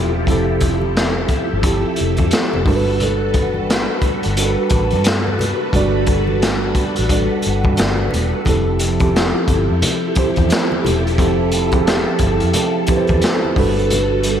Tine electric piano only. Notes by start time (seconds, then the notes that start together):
Already playing: F3 C4 E4 G4 A4
0.26 F3 C4 E4 G4 A4
1.64 F3 C4 E4 G4 A4
2.65 G3 D4 F#4 A4 A#4
2.75 B4
4.36 G3 D4 F#4 A4 A#4
4.46 B4
5.73 G3 D4 F#4 A4 D5
7.09 G3 D4 F#4 A4 D5
8.46 F3 C4 E4 G4 A4
9.00 F3 C4 E4 G4 A4
10.16 F3 C4 E4 G4 C5
11.18 F3 C4 E4 G4 A4
11.73 F3 C4 E4 G4 G#4
11.83 A4
12.88 F3 C4 E4 G4 B4
12.97 C5
13.56 G3 D4 F#4 A4 B4